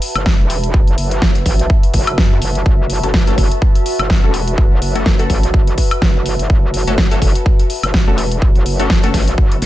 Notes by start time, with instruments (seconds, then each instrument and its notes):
Already playing: ambient pad F#4 B4 E5 A5
0.02 open hi-hat
0.15 wobble bass F#1, closed hi-hat, high woodblock
0.26 kick, snare
0.39 wobble bass E1
0.50 open hi-hat
0.64 closed hi-hat
0.74 kick
0.87 wobble bass F#1, closed hi-hat
0.98 wobble bass F#1, open hi-hat
1.11 closed hi-hat
1.22 kick, snare
1.35 closed hi-hat
1.46 wobble bass A1, kick, open hi-hat
1.59 closed hi-hat
1.70 kick
1.83 closed hi-hat
1.94 wobble bass F#1, kick, open hi-hat
2.07 closed hi-hat, high woodblock
2.18 wobble bass F#2, kick, snare
2.42 wobble bass F#1, open hi-hat
2.55 closed hi-hat
2.66 wobble bass F#1, kick
2.90 open hi-hat
3.03 wobble bass F#1, synth stab A3 C#4 F#4 A4, closed hi-hat
3.14 kick, snare
3.27 synth stab A3 C#4 F#4 A4, closed hi-hat
3.38 kick, open hi-hat
3.51 closed hi-hat
3.62 kick
3.75 closed hi-hat
3.86 open hi-hat
3.99 wobble bass F#1, closed hi-hat, high woodblock
4.10 kick, snare
4.23 wobble bass E1, synth stab A3 C#4 F#4 A4
4.34 open hi-hat
4.48 closed hi-hat
4.58 kick
4.71 wobble bass F#1
4.82 wobble bass F#1, open hi-hat
4.95 synth stab A3 C#4 F#4 A4, closed hi-hat
5.06 kick, snare
5.19 synth stab A3 C#4 F#4 A4, closed hi-hat
5.30 wobble bass A1, kick, open hi-hat
5.43 closed hi-hat
5.54 wobble bass F#1, kick
5.67 closed hi-hat
5.78 kick, open hi-hat
5.91 closed hi-hat, high woodblock
6.02 wobble bass F#1, kick, snare
6.26 open hi-hat
6.39 wobble bass F#1, closed hi-hat
6.50 wobble bass F#1, kick
6.74 open hi-hat
6.87 wobble bass F#1, synth stab A3 C#4 F#4 A4, closed hi-hat
6.98 kick, snare
7.11 synth stab A3 C#4 F#4 A4, closed hi-hat
7.22 kick, open hi-hat
7.35 closed hi-hat
7.46 kick
7.59 closed hi-hat
7.70 open hi-hat
7.83 wobble bass F#1, closed hi-hat, high woodblock
7.94 kick, snare
8.07 wobble bass E1, synth stab A3 C#4 F#4 A4
8.18 open hi-hat
8.32 closed hi-hat
8.42 kick
8.55 wobble bass F#1, closed hi-hat
8.66 wobble bass F#1, open hi-hat
8.80 synth stab A3 C#4 F#4 A4, closed hi-hat
8.90 kick, snare
9.03 synth stab A3 C#4 F#4 A4, closed hi-hat
9.14 wobble bass A1, kick, snare, open hi-hat
9.28 closed hi-hat
9.38 wobble bass F#1, kick
9.52 closed hi-hat
9.62 wobble bass F#1, snare, open hi-hat